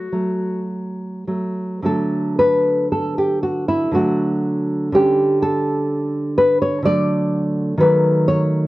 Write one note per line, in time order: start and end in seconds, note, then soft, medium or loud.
0.00 0.70 F#4 soft
0.12 1.24 F#3 soft
0.12 1.24 A3 soft
1.27 1.81 F#3 soft
1.27 1.81 A3 soft
1.83 3.90 D3 soft
1.83 3.90 F#3 soft
1.83 3.91 A3 soft
1.83 2.38 A4 medium
2.39 2.90 B4 medium
2.92 3.18 A4 medium
3.18 3.43 G4 medium
3.43 3.68 F#4 medium
3.69 3.95 E4 medium
3.92 4.90 D3 medium
3.92 4.91 F#3 soft
3.92 4.91 A3 soft
3.92 4.91 F#4 medium
4.92 6.81 D3 medium
4.92 6.81 G3 soft
4.92 6.82 C#4 soft
4.92 5.41 G4 medium
5.42 6.34 A4 medium
6.38 6.61 B4 medium
6.62 6.85 C#5 medium
6.82 7.76 D3 medium
6.82 7.77 F#3 medium
6.82 7.77 A3 soft
6.82 7.76 D5 loud
7.78 8.67 D#3 medium
7.78 8.67 F#3 soft
7.78 8.67 A3 soft
7.78 8.26 B4 medium
8.28 8.67 C#5 loud